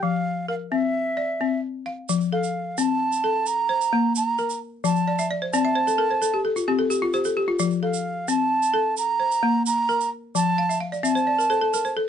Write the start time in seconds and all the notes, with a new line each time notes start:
Already playing: G4
0.03 F3 F5
0.48 A#4 F5
0.72 C4 E5
1.17 D5
1.41 C4
1.86 F5
2.09 F3, shaker
2.21 shaker
2.32 A4 F5
2.43 shaker
2.78 C4 A5, shaker
3.12 shaker
3.24 A4
3.46 A#5, shaker
3.69 C5
3.81 shaker
3.93 A#3
4.15 A#5, shaker
4.38 A#4, shaker
4.50 shaker
4.84 F3 A5, shaker
4.96 shaker
5.08 D5
5.19 E5, shaker
5.31 D5
5.42 C5
5.53 C4 D5 A5, shaker
5.65 E5
5.76 C5
5.87 A4, shaker
5.98 A4 A#4
6.11 C5
6.22 A4, shaker
6.34 G4
6.45 A4
6.56 F4, shaker
6.68 C4 G4
6.79 A4
6.90 G4, shaker
7.02 F4
7.13 G4 C5, shaker
7.24 A4, shaker
7.37 G4
7.48 F4
7.59 F3, shaker
7.70 shaker
7.83 A4 F5
7.94 shaker
8.28 C4 A5, shaker
8.62 shaker
8.74 A4
8.97 A#5, shaker
9.20 C5
9.31 shaker
9.43 A#3
9.66 A#5, shaker
9.89 A#4, shaker
10.01 shaker
10.35 F3 A5, shaker
10.58 F5
10.69 E5, shaker
10.81 F5
10.92 D5, shaker
11.03 C4 E5 A5, shaker
11.15 C5, shaker
11.27 D5
11.38 A#4, shaker
11.50 A4 C5, shaker
11.61 A4
11.74 A#4, shaker
11.85 C5, shaker
11.97 A4